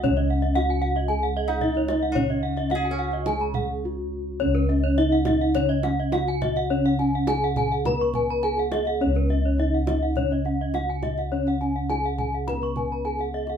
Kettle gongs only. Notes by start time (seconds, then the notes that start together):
Already playing: C#3
0.03 C#4
0.09 C#2
0.56 D#4
1.63 D#4
2.17 C#4
3.27 C#3
3.84 D#4
4.40 C#4
4.46 C#2
4.98 D#4
6.13 D#4
6.71 C#4
7.28 D#4
7.86 C#3
8.44 D#4
9.01 C#4
9.06 C#2
9.59 D#4
10.75 D#4
11.32 C#4
11.90 D#4
12.49 C#3
13.06 D#4